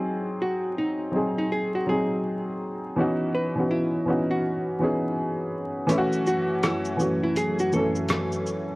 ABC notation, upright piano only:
X:1
M:4/4
L:1/16
Q:"Swing 16ths" 1/4=82
K:F#dor
V:1 name="Upright piano"
[F,^B,DG]4 z2 [F,B,DG]3 z [F,B,DG]4- [F,B,DG] z | [E,B,CDF]2 z [E,B,CDF]2 z [E,B,CDF]3 z [E,B,CDG]4- [E,B,CDG] z | [E,A,CEF]4- [E,A,CEF] z [E,A,CF]3 z [E,A,CA]4- [E,A,CA] z |]